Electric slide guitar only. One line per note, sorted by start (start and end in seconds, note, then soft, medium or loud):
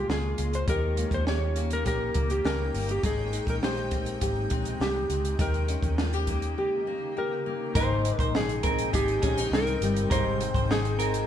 0.00 0.10 G4 medium
0.11 0.55 G#4 medium
0.55 0.68 C5 medium
0.70 1.14 A#4 loud
1.14 1.27 C5 medium
1.28 1.69 C#5 loud
1.73 1.86 A#4 medium
1.87 2.32 A#4 medium
2.31 2.46 G4 medium
2.46 2.91 A#4 medium
2.91 3.05 G4 medium
3.06 3.49 G#4 medium
3.50 3.55 A#4 medium
3.64 4.85 C5 loud
4.82 5.36 G4 medium
5.41 6.58 A#4 medium
6.59 7.13 G4 medium
7.18 7.78 A#4 medium
7.76 8.18 C5 loud
8.18 8.31 A#4 loud
8.36 8.95 G#4 loud
8.95 9.49 G4 medium
9.54 10.12 A#4 loud
10.12 10.66 C5 loud
10.71 11.27 G#4 loud